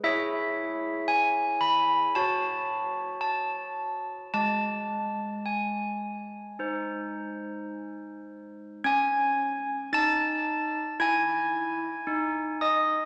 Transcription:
0, 0, Header, 1, 2, 480
1, 0, Start_track
1, 0, Key_signature, 4, "minor"
1, 0, Tempo, 1061947
1, 19, Time_signature, 4, 2, 24, 8
1, 1460, Tempo, 1119403
1, 3860, Tempo, 1069519
1, 5757, End_track
2, 0, Start_track
2, 0, Title_t, "Handbells"
2, 0, Program_c, 0, 14
2, 16, Note_on_c, 0, 64, 70
2, 18, Note_on_c, 0, 76, 104
2, 20, Note_on_c, 0, 68, 49
2, 26, Note_on_c, 0, 73, 49
2, 475, Note_off_c, 0, 76, 0
2, 488, Note_on_c, 0, 80, 104
2, 720, Note_off_c, 0, 80, 0
2, 726, Note_on_c, 0, 83, 105
2, 953, Note_off_c, 0, 64, 0
2, 954, Note_off_c, 0, 68, 0
2, 957, Note_off_c, 0, 73, 0
2, 960, Note_off_c, 0, 83, 0
2, 973, Note_on_c, 0, 81, 89
2, 975, Note_on_c, 0, 73, 48
2, 977, Note_on_c, 0, 66, 67
2, 1442, Note_off_c, 0, 81, 0
2, 1450, Note_on_c, 0, 81, 81
2, 1919, Note_off_c, 0, 81, 0
2, 1925, Note_off_c, 0, 66, 0
2, 1925, Note_off_c, 0, 73, 0
2, 1934, Note_on_c, 0, 81, 83
2, 1935, Note_on_c, 0, 56, 54
2, 2404, Note_off_c, 0, 81, 0
2, 2414, Note_on_c, 0, 80, 64
2, 2902, Note_on_c, 0, 63, 44
2, 2904, Note_on_c, 0, 72, 46
2, 3361, Note_off_c, 0, 80, 0
2, 3842, Note_off_c, 0, 56, 0
2, 3843, Note_off_c, 0, 63, 0
2, 3845, Note_off_c, 0, 72, 0
2, 3867, Note_on_c, 0, 92, 109
2, 3868, Note_on_c, 0, 61, 76
2, 3876, Note_on_c, 0, 80, 86
2, 4253, Note_off_c, 0, 61, 0
2, 4331, Note_off_c, 0, 92, 0
2, 4336, Note_off_c, 0, 80, 0
2, 4353, Note_on_c, 0, 63, 70
2, 4355, Note_on_c, 0, 93, 117
2, 4361, Note_on_c, 0, 81, 89
2, 4734, Note_off_c, 0, 63, 0
2, 4812, Note_off_c, 0, 93, 0
2, 4815, Note_off_c, 0, 81, 0
2, 4834, Note_on_c, 0, 64, 70
2, 4834, Note_on_c, 0, 92, 116
2, 4842, Note_on_c, 0, 80, 93
2, 5213, Note_off_c, 0, 64, 0
2, 5315, Note_on_c, 0, 63, 62
2, 5530, Note_off_c, 0, 92, 0
2, 5533, Note_off_c, 0, 80, 0
2, 5559, Note_on_c, 0, 87, 86
2, 5561, Note_on_c, 0, 75, 74
2, 5693, Note_off_c, 0, 63, 0
2, 5757, Note_off_c, 0, 75, 0
2, 5757, Note_off_c, 0, 87, 0
2, 5757, End_track
0, 0, End_of_file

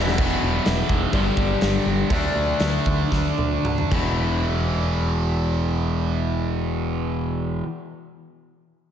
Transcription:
0, 0, Header, 1, 4, 480
1, 0, Start_track
1, 0, Key_signature, 1, "minor"
1, 0, Tempo, 474684
1, 187, Time_signature, 4, 2, 24, 8
1, 1630, Tempo, 501253
1, 3070, Tempo, 536673
1, 4030, Tempo, 555042
1, 8116, End_track
2, 0, Start_track
2, 0, Title_t, "Overdriven electric guitar"
2, 0, Program_c, 0, 29
2, 0, Note_on_c, 0, 40, 78
2, 0, Note_on_c, 0, 47, 83
2, 0, Note_on_c, 0, 52, 89
2, 169, Note_off_c, 0, 40, 0
2, 181, Note_on_c, 0, 40, 86
2, 184, Note_off_c, 0, 47, 0
2, 185, Note_off_c, 0, 52, 0
2, 202, Note_on_c, 0, 47, 90
2, 216, Note_on_c, 0, 52, 91
2, 1125, Note_off_c, 0, 40, 0
2, 1134, Note_on_c, 0, 43, 90
2, 1136, Note_off_c, 0, 47, 0
2, 1143, Note_off_c, 0, 52, 0
2, 1153, Note_on_c, 0, 50, 81
2, 1169, Note_on_c, 0, 55, 94
2, 2080, Note_off_c, 0, 43, 0
2, 2082, Note_off_c, 0, 50, 0
2, 2094, Note_on_c, 0, 50, 74
2, 2097, Note_off_c, 0, 55, 0
2, 2116, Note_on_c, 0, 57, 90
2, 2134, Note_on_c, 0, 62, 96
2, 3773, Note_on_c, 0, 40, 75
2, 3781, Note_off_c, 0, 50, 0
2, 3791, Note_off_c, 0, 57, 0
2, 3793, Note_on_c, 0, 47, 76
2, 3800, Note_off_c, 0, 62, 0
2, 3808, Note_on_c, 0, 52, 88
2, 7011, Note_off_c, 0, 40, 0
2, 7031, Note_off_c, 0, 47, 0
2, 7046, Note_off_c, 0, 52, 0
2, 8116, End_track
3, 0, Start_track
3, 0, Title_t, "Picked electric bass"
3, 0, Program_c, 1, 34
3, 0, Note_on_c, 1, 28, 101
3, 170, Note_off_c, 1, 28, 0
3, 187, Note_on_c, 1, 28, 81
3, 347, Note_off_c, 1, 28, 0
3, 428, Note_on_c, 1, 28, 88
3, 587, Note_off_c, 1, 28, 0
3, 667, Note_on_c, 1, 28, 86
3, 827, Note_off_c, 1, 28, 0
3, 902, Note_on_c, 1, 28, 76
3, 1064, Note_off_c, 1, 28, 0
3, 1144, Note_on_c, 1, 31, 82
3, 1306, Note_off_c, 1, 31, 0
3, 1385, Note_on_c, 1, 31, 93
3, 1549, Note_off_c, 1, 31, 0
3, 1634, Note_on_c, 1, 31, 86
3, 1790, Note_off_c, 1, 31, 0
3, 1865, Note_on_c, 1, 31, 86
3, 2023, Note_off_c, 1, 31, 0
3, 2100, Note_on_c, 1, 38, 86
3, 2260, Note_off_c, 1, 38, 0
3, 2340, Note_on_c, 1, 38, 82
3, 2501, Note_off_c, 1, 38, 0
3, 2585, Note_on_c, 1, 38, 81
3, 2747, Note_off_c, 1, 38, 0
3, 2828, Note_on_c, 1, 38, 80
3, 2993, Note_off_c, 1, 38, 0
3, 3071, Note_on_c, 1, 38, 77
3, 3228, Note_off_c, 1, 38, 0
3, 3310, Note_on_c, 1, 38, 93
3, 3468, Note_off_c, 1, 38, 0
3, 3543, Note_on_c, 1, 38, 92
3, 3705, Note_off_c, 1, 38, 0
3, 3783, Note_on_c, 1, 28, 89
3, 6987, Note_off_c, 1, 28, 0
3, 8116, End_track
4, 0, Start_track
4, 0, Title_t, "Drums"
4, 74, Note_on_c, 9, 38, 79
4, 175, Note_off_c, 9, 38, 0
4, 181, Note_on_c, 9, 49, 98
4, 185, Note_on_c, 9, 36, 120
4, 283, Note_off_c, 9, 49, 0
4, 286, Note_off_c, 9, 36, 0
4, 662, Note_on_c, 9, 46, 47
4, 669, Note_on_c, 9, 38, 112
4, 763, Note_off_c, 9, 46, 0
4, 770, Note_off_c, 9, 38, 0
4, 904, Note_on_c, 9, 36, 77
4, 1005, Note_off_c, 9, 36, 0
4, 1143, Note_on_c, 9, 36, 82
4, 1143, Note_on_c, 9, 46, 46
4, 1244, Note_off_c, 9, 36, 0
4, 1245, Note_off_c, 9, 46, 0
4, 1386, Note_on_c, 9, 36, 80
4, 1487, Note_off_c, 9, 36, 0
4, 1631, Note_on_c, 9, 46, 54
4, 1638, Note_on_c, 9, 38, 97
4, 1727, Note_off_c, 9, 46, 0
4, 1734, Note_off_c, 9, 38, 0
4, 2099, Note_on_c, 9, 46, 58
4, 2101, Note_on_c, 9, 36, 99
4, 2195, Note_off_c, 9, 46, 0
4, 2196, Note_off_c, 9, 36, 0
4, 2574, Note_on_c, 9, 46, 56
4, 2581, Note_on_c, 9, 38, 100
4, 2670, Note_off_c, 9, 46, 0
4, 2676, Note_off_c, 9, 38, 0
4, 2825, Note_on_c, 9, 36, 78
4, 2921, Note_off_c, 9, 36, 0
4, 3073, Note_on_c, 9, 36, 67
4, 3080, Note_on_c, 9, 38, 49
4, 3162, Note_off_c, 9, 36, 0
4, 3169, Note_off_c, 9, 38, 0
4, 3307, Note_on_c, 9, 48, 59
4, 3396, Note_off_c, 9, 48, 0
4, 3547, Note_on_c, 9, 47, 78
4, 3636, Note_off_c, 9, 47, 0
4, 3665, Note_on_c, 9, 45, 71
4, 3754, Note_off_c, 9, 45, 0
4, 3785, Note_on_c, 9, 36, 100
4, 3785, Note_on_c, 9, 49, 82
4, 3874, Note_off_c, 9, 49, 0
4, 3875, Note_off_c, 9, 36, 0
4, 8116, End_track
0, 0, End_of_file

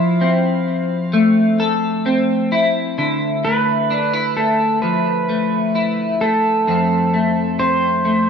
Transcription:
0, 0, Header, 1, 3, 480
1, 0, Start_track
1, 0, Tempo, 923077
1, 1545, Time_signature, 4, 2, 24, 8
1, 4314, End_track
2, 0, Start_track
2, 0, Title_t, "Pedal steel guitar"
2, 0, Program_c, 0, 26
2, 0, Note_on_c, 0, 77, 92
2, 1049, Note_off_c, 0, 77, 0
2, 1792, Note_on_c, 0, 71, 83
2, 2270, Note_on_c, 0, 69, 74
2, 2283, Note_off_c, 0, 71, 0
2, 2504, Note_off_c, 0, 69, 0
2, 2506, Note_on_c, 0, 71, 76
2, 3228, Note_off_c, 0, 71, 0
2, 3230, Note_on_c, 0, 69, 74
2, 3947, Note_off_c, 0, 69, 0
2, 3949, Note_on_c, 0, 72, 101
2, 4314, Note_off_c, 0, 72, 0
2, 4314, End_track
3, 0, Start_track
3, 0, Title_t, "Clean electric guitar"
3, 0, Program_c, 1, 27
3, 0, Note_on_c, 1, 53, 89
3, 0, Note_on_c, 1, 64, 63
3, 0, Note_on_c, 1, 69, 72
3, 110, Note_on_c, 1, 60, 60
3, 589, Note_on_c, 1, 57, 74
3, 726, Note_off_c, 1, 69, 0
3, 830, Note_on_c, 1, 69, 72
3, 1064, Note_off_c, 1, 60, 0
3, 1070, Note_on_c, 1, 60, 59
3, 1308, Note_off_c, 1, 64, 0
3, 1310, Note_on_c, 1, 64, 65
3, 1546, Note_off_c, 1, 53, 0
3, 1550, Note_on_c, 1, 50, 68
3, 1551, Note_off_c, 1, 64, 0
3, 1553, Note_on_c, 1, 64, 59
3, 1596, Note_off_c, 1, 60, 0
3, 1791, Note_off_c, 1, 57, 0
3, 1791, Note_on_c, 1, 57, 53
3, 2028, Note_off_c, 1, 64, 0
3, 2030, Note_on_c, 1, 62, 55
3, 2150, Note_off_c, 1, 62, 0
3, 2150, Note_on_c, 1, 64, 49
3, 2269, Note_off_c, 1, 57, 0
3, 2271, Note_on_c, 1, 57, 55
3, 2511, Note_on_c, 1, 53, 50
3, 2650, Note_off_c, 1, 69, 0
3, 2750, Note_off_c, 1, 57, 0
3, 2752, Note_on_c, 1, 57, 51
3, 2985, Note_off_c, 1, 64, 0
3, 2991, Note_on_c, 1, 64, 52
3, 3229, Note_off_c, 1, 57, 0
3, 3231, Note_on_c, 1, 57, 53
3, 3468, Note_off_c, 1, 50, 0
3, 3471, Note_off_c, 1, 64, 0
3, 3471, Note_on_c, 1, 41, 73
3, 3474, Note_on_c, 1, 60, 57
3, 3710, Note_off_c, 1, 57, 0
3, 3712, Note_on_c, 1, 57, 51
3, 3941, Note_off_c, 1, 60, 0
3, 3947, Note_on_c, 1, 60, 53
3, 4184, Note_off_c, 1, 57, 0
3, 4186, Note_on_c, 1, 57, 52
3, 4314, Note_off_c, 1, 41, 0
3, 4314, Note_off_c, 1, 53, 0
3, 4314, Note_off_c, 1, 57, 0
3, 4314, Note_off_c, 1, 60, 0
3, 4314, End_track
0, 0, End_of_file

